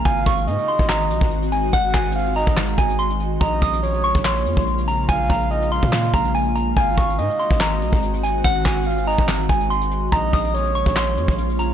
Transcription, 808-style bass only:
\new Staff \with { instrumentName = "808-style bass" } { \clef bass \time 4/4 \key bes \minor \tempo 4 = 143 aes,,8 aes,,8 aes,16 r8 aes,,8. bes,,16 aes,,4~ aes,,16 | aes,,8 aes,,4~ aes,,16 aes,,8. aes,,4. | bes,,8 bes,,4~ bes,,16 bes,,8. f,16 bes,,4~ bes,,16 | bes,,8 bes,,4~ bes,,16 bes,8. bes,,4. |
aes,,8 aes,,8 aes,16 r8 aes,,8. bes,,16 aes,,4~ aes,,16 | aes,,8 aes,,4~ aes,,16 aes,,8. aes,,4. | bes,,8 bes,,4~ bes,,16 bes,,8. f,16 bes,,4~ bes,,16 | }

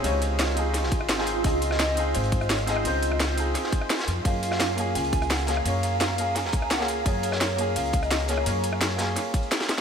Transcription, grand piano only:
\new Staff \with { instrumentName = "Grand piano" } { \time 4/4 \key ges \lydian \tempo 4 = 171 <c ees' f' des''>4. <c' ees' f' aes'>4.~ <c' ees' f' aes'>16 <c' ees' f' aes'>8. | <c' ees' f' aes'>4. <c' ees' f' aes'>2 <c' ees' f' aes'>8 | <c' ees' f' c''>4. <c' ees' f' aes'>4.~ <c' ees' f' aes'>16 r8. | <bes des' f' aes'>4. <bes des' f' aes'>2 <bes des' f' aes'>8 |
<bes des' f' des''>4. <bes des' f' aes'>4.~ <bes des' f' aes'>16 <bes des' f' aes'>8. | <bes des' f' aes'>4. <bes des' f' aes'>2 <bes des' f' aes'>8 | <bes des' f' des''>4. <bes des' f' aes'>4.~ <bes des' f' aes'>16 r8. | }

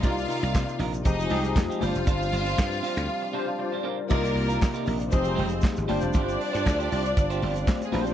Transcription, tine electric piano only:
\new Staff \with { instrumentName = "Tine electric piano" } { \time 4/4 \key c \minor \tempo 4 = 118 << { r1 | r2 r8 f''8 d''8 bes'8 | r1 | r1 | } \\ { <c bes d' ees' f' d''>4. r8 <f ees' g' aes'>8 <f ees' g' aes'>4 <g d' f' c''>8~ | <g d' f' c''>4 r4. <g d' f' c''>4 r8 | <c bes ees' f' d''>4. r8 <f ees' g' aes'>4 r8 <g d' f' c''>8~ | <g d' f' c''>4 r2 r8 <g d' f' c''>8 | } >> }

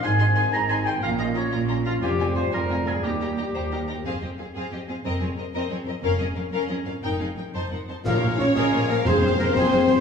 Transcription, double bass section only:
\new Staff \with { instrumentName = "Double bass section" } { \clef bass \time 6/8 \key f \minor \tempo 4. = 120 aes,,4. aes,,4. | bes,,4. bes,,4. | f,,4. f,,4. | ees,4. ees,4. |
f,,8 r2 r8 | f,,8 r2 r8 | f,,8 r2 r8 | f,,8 r4 f,,8 r4 |
\key bes \minor bes,,8 bes,,8 bes,,8 bes,,8 bes,,8 bes,,8 | f,,8 f,,8 f,,8 f,,8 f,,8 f,,8 | }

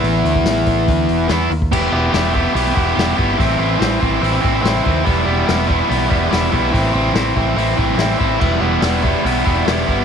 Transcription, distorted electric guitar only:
\new Staff \with { instrumentName = "Distorted electric guitar" } { \time 4/4 \key e \minor \tempo 4 = 143 <e b e'>2. <e b e'>8 r8 | <b e' g'>8 <b e' g'>8 <b e' g'>8 <b e' g'>8 <b e' g'>8 <b e' g'>8 <b e' g'>8 <b e' g'>8 | <e c' e'>8 <e c' e'>8 <e c' e'>8 <e c' e'>8 <e c' e'>8 <e c' e'>8 <e c' e'>8 <e c' e'>8 | <g b e'>8 <g b e'>8 <g b e'>8 <g b e'>8 <g b e'>8 <g b e'>8 <g b e'>8 <g b e'>8 |
<e c' e'>8 <e c' e'>8 <e c' e'>8 <e c' e'>8 <e c' e'>8 <e c' e'>8 <e c' e'>8 <e c' e'>8 | <g b e'>8 <g b e'>8 <g b e'>8 <g b e'>8 <g b e'>8 <g b e'>8 <g b e'>8 <g b e'>8 | }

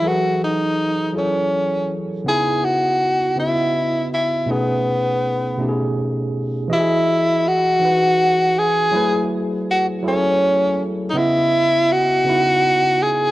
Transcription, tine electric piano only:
\new Staff \with { instrumentName = "Tine electric piano" } { \time 6/8 \key e \major \tempo 4. = 54 <e fis gis' a' b'>4~ <e fis gis' a' b'>16 r16 <fis e' gis' a' cis''>4~ <fis e' gis' a' cis''>16 r16 | <cis b dis' e'>4~ <cis b dis' e'>16 r16 <cis b fis' dis''>4~ <cis b fis' dis''>16 r16 | <b, a cis' dis' gis'>4~ <b, a cis' dis' gis'>16 r16 <b, a cis' dis' g' gis'>4~ <b, a cis' dis' g' gis'>16 r16 | <e fis' g' gis' dis''>4~ <e fis' g' gis' dis''>16 r16 <e dis' fis' b'>4~ <e dis' fis' b'>16 r16 |
<fis a e' gis' b'>4~ <fis a e' gis' b'>16 r16 <fis e' gis' a' cis''>4~ <fis e' gis' a' cis''>16 r16 | <cis b e' dis''>4~ <cis b e' dis''>16 r16 <cis b dis' e'>4~ <cis b dis' e'>16 r16 | }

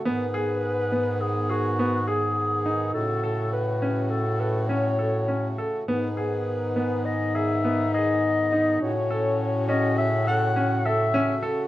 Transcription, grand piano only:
\new Staff \with { instrumentName = "Grand piano" } { \time 5/4 \key fis \dorian \tempo 4 = 103 b8 gis'4 b4 gis'8 b8 gis'4 dis'8~ | dis'8 a'4 cis'4 a'8 cis'8 a'8 cis'8 a'8 | b8 gis'4 b4 gis'8 b8 gis'4 dis'8~ | dis'8 a'4 cis'4 a'8 cis'8 a'8 cis'8 a'8 | }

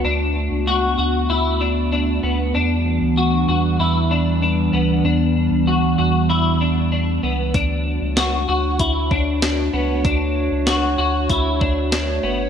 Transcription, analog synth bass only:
\new Staff \with { instrumentName = "Analog synth bass" } { \clef bass \time 4/4 \key d \major \tempo 4 = 96 d,8. cis,8. d,8 d,4. d,8 | e,8. d,8. e,8 e,4. d,8 | e,8. d,8. e,8 e,4. cis,8 | d,8. cis,8. d,8 d,4. cis,8 |
d,8. cis,8. d,8 d,4. g,,8 | }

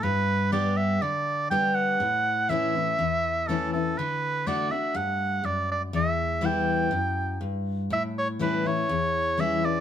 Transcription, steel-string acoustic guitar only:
\new Staff \with { instrumentName = "Steel-string acoustic guitar" } { \time 4/4 \key a \mixolydian \tempo 4 = 122 << { r4 <g b d' g'>4 r4 <g b d' g'>4 | r4 <e a cis' e'>8 <cis' e'>8 r4 <e a cis' e'>8 <cis' e'>8 | r4 <d a d' fis'>8 <d' fis'>8 r2 | r4 <e g b e'>4 r2 |
r4 <e g cis' e'>8 <cis' e'>8 r4 <e g cis' e'>8 <cis' e'>8 | } \\ { g,2 d2 | a,2 e,2 | d2 g,4 fis,4 | e,2 fis,4 g,4 |
a,2 e,2 | } >> }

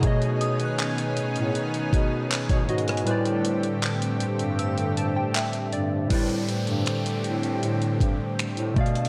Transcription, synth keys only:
\new Staff \with { instrumentName = "Synth keys" } { \time 4/4 \key a \minor \tempo 4 = 79 << { r2. r16 cis''16 <fis' dis''>16 <b' gis''>16~ | <b' gis''>16 r2 r16 a''16 g''16 e''8 d''8 | r1 | } \\ { <b, a gis' cis'' dis''>2.~ <b, a gis' cis'' dis''>8 r8 | <a, g b' c'' d''>1 | <a, g b' c'' d''>2.~ <a, g b' c'' d''>8 <b, a d'' f''>8 | } >> }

